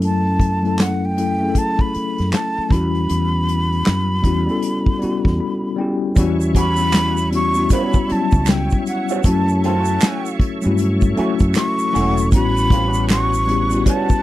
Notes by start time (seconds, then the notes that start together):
Already playing: F#2 F#3 A3 C#4 E4 A4
0.02 A5, closed hi-hat
0.40 kick, closed hi-hat
0.62 F#3 A3 C#4 E4, closed hi-hat
0.67 A4
0.79 F#5, snare, clap, closed hi-hat
1.05 G5
1.15 F#3 A3 C#4 E4, closed hi-hat
1.20 A4
1.38 F#3 A3 C#4
1.42 E4 G#4
1.50 A4
1.55 A5, kick, closed hi-hat
1.79 B5, kick
1.94 muted fretless electric bass stroke, closed hi-hat
2.18 F#2, snare, closed hi-hat
2.33 A5, snare, clap, closed hi-hat
2.58 muted fretless electric bass stroke
2.69 E2 G3 B3 C#4 E4 B5, kick, snare, closed hi-hat
2.74 F#4
2.95 closed hi-hat
3.09 E2, closed hi-hat
3.48 closed hi-hat
3.72 closed hi-hat
3.86 F#2, snare, clap, closed hi-hat
4.22 E2 G3 B3 C#4 E4, kick, closed hi-hat
4.27 F#4
4.46 G3 B3 C#4 E4, closed hi-hat
4.51 A4
4.62 closed hi-hat
4.86 kick
4.99 G3 B3 C#4 E4, closed hi-hat
5.04 F#4, muted fretless electric bass stroke
5.25 E2, kick, snare
5.40 B5
5.76 G3 B3 C#4 E4 G5
5.81 G4
6.15 E2 G3 B3 C#4 E4 C#5 E5 C#6, kick, closed hi-hat, shaker
6.20 F#4
6.41 shaker
6.55 G3 B3 C#4 F#4 B5, kick, closed hi-hat
6.76 closed hi-hat, shaker
6.93 G3 B3 C#4 F#4, finger snap, snare, clap, closed hi-hat, shaker
7.17 shaker
7.30 G3 B3 C#4 E4, closed hi-hat
7.34 F#4 C#6
7.54 G3 B3 C#4, shaker
7.58 E4 F#4
7.70 G3 B3 C#4 F#4 B5, kick, closed hi-hat, shaker
7.93 kick, shaker
8.08 G3 B3 C#4 E4, muted fretless electric bass stroke, closed hi-hat
8.12 F#3 A5
8.31 C#2, kick, shaker
8.46 G5, finger snap, snare, clap, closed hi-hat, shaker
8.70 kick, shaker
8.86 F#5, closed hi-hat, shaker
9.09 G3 B3 C#4 F#4, shaker
9.23 F#2 F#3 A3 C#4 E4 A4 A5 C#6, kick, closed hi-hat, shaker
9.28 F#4
9.48 shaker
9.64 D#3 G#3 C4 F4 A5, closed hi-hat
9.79 E3 A3 C#4 F#4
9.85 closed hi-hat, shaker
10.01 E3 A3 C#4, finger snap, snare, clap, closed hi-hat, shaker
10.05 F#4
10.26 shaker
10.40 muted fretless electric bass stroke, kick, closed hi-hat
10.62 F#3 A3 C#4, closed hi-hat, shaker
10.66 G2 E4 F#4
10.78 closed hi-hat, shaker
11.01 kick, shaker
11.15 E3 F#3 A3 C#4 E4 F#4, muted fretless electric bass stroke, closed hi-hat
11.20 F#4
11.39 F#2, kick, closed hi-hat, shaker
11.54 C#6, finger snap, muted clean electric guitar stroke, snare, clap, closed hi-hat, shaker
11.79 shaker
11.93 E1 E3 F#3 A3 C#4 E4 F#4, snare, open hi-hat, shaker
11.97 A4
12.18 closed hi-hat, shaker
12.31 A1 G3 B3 C#4 E4 B4 F#5 B5, kick, closed hi-hat, shaker
12.36 F#4
12.57 shaker
12.70 F#3 A#3 C4 F4, kick, closed hi-hat
12.87 G3 B3 C#4 F#4
12.94 shaker
13.09 G3 B3 C#4 F#4 C#6, finger snap, snare, clap, closed hi-hat, shaker
13.34 shaker
13.46 G3 B3 C#4 E4, closed hi-hat
13.51 G4
13.70 G3 B3 C#4 E4, closed hi-hat, shaker
13.75 F#4
13.86 G3 B3 C#4 F#4 A5, kick, closed hi-hat, shaker
14.09 kick, shaker